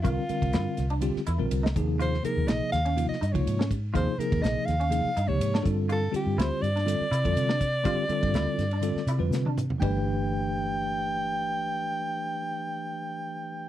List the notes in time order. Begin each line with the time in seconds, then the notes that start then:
0.02 C2 D3 G3 C4 F4 A#4, kick, hi-hat pedal, ride
0.29 D3 G3 C4 F4 A#4, muted fingered electric bass stroke, hi-hat pedal, ride
0.42 C2, kick, ride
0.53 G2 E4, snare, hi-hat pedal, ride
0.77 C2, snare, hi-hat pedal, ride
0.90 D4, ride
1.01 D3 G3 C4 F4 G4, hi-hat pedal, ride
1.16 snare
1.26 E2 E4 F4 A4, hi-hat pedal, ride
1.38 A#1 D3 G3 C4 F4 A#4
1.51 C2, hi-hat pedal, ride
1.63 D#4, snare
1.76 D#2 C3 F3 A#3 D#4 G#4, kick, hi-hat pedal, ride
2.00 F4 C5, hi-hat pedal, ride
2.14 snare
2.23 C3 F3 A#3 D#4 G#4 A#4, muted fingered electric bass stroke, hi-hat pedal, ride
2.37 D#2
2.48 A#1 D#4 D#5, snare, hi-hat pedal, ride
2.72 D#2 F5, snare, hi-hat pedal, ride
2.85 C#4, ride
2.96 C3 F3 A#3 D#4 F4, hi-hat pedal, ride
3.09 D#5, muted fingered electric bass stroke
3.13 snare
3.21 G2 D#4, hi-hat pedal, ride
3.32 C#2 C3 F3 A#3 D#4 F4 C#5, kick, ride
3.47 G#2, hi-hat pedal, ride
3.59 C#4, snare
3.70 D#4 G4, kick, hi-hat pedal, ride
3.94 D#2 C3 F3 A#3 D#4 F4 G#4 C5, kick, hi-hat pedal, ride
4.18 C3 F3 A#3 D#4 G#4 A#4, muted fingered electric bass stroke, hi-hat pedal, ride
4.32 D#2, kick, ride
4.42 A#1 D#4 D#5, snare, hi-hat pedal, ride
4.66 D#2 F5, snare, hi-hat pedal, ride
4.80 C#4, ride
4.90 C3 F3 A#3 D#4 G#4, hi-hat pedal, ride
5.05 muted fingered electric bass stroke
5.17 G2 D#4, hi-hat pedal, ride
5.28 C#2 C3 F3 A#3 D#4 G4 C#5
5.39 G#2, hi-hat pedal, ride
5.54 D4, snare
5.62 G2 D3 G3 C4 F4 A4, kick, hi-hat pedal, ride
5.89 F4 A4, hi-hat pedal, ride
6.11 D3 G3 C4 F4 G4, muted fingered electric bass stroke, hi-hat pedal, ride
6.16 G4
6.26 G2
6.38 D2 E4 C5, snare, hi-hat pedal, ride
6.62 G2 D5, hi-hat pedal, ride
6.76 D4, snare, ride
6.85 D3 G3 C4 F4 A4, hi-hat pedal, ride
7.01 muted fingered electric bass stroke
7.11 C3 E4 B4, hi-hat pedal, ride
7.24 F2 D3 G3 C4 F4 A4, kick, ride
7.36 C3, hi-hat pedal, ride
7.49 D4, snare
7.60 F4 A4, kick, hi-hat pedal, ride
7.84 G2 D3 G3 C4 F4 G4, kick, hi-hat pedal, ride
8.09 D3 G3 C4 F4 A4, muted fingered electric bass stroke, hi-hat pedal, ride
8.23 G2, kick, ride
8.34 D2 E4, snare, hi-hat pedal, ride
8.58 G2, snare, hi-hat pedal, ride
8.71 D4, ride
8.81 D3 G3 C4 F4 A4, hi-hat pedal, ride
8.96 muted fingered electric bass stroke, snare
9.07 C3 E4 A4, hi-hat pedal, ride
9.18 F2 D3 G3 C4 F4 B4
9.30 C3, snare, hi-hat pedal
9.45 D4, high tom
9.56 F4 B4, hi-hat pedal, mid tom
9.70 floor tom
9.78 G1 E3 G3 A3 D4 G4 G5, kick, ride bell
9.83 B4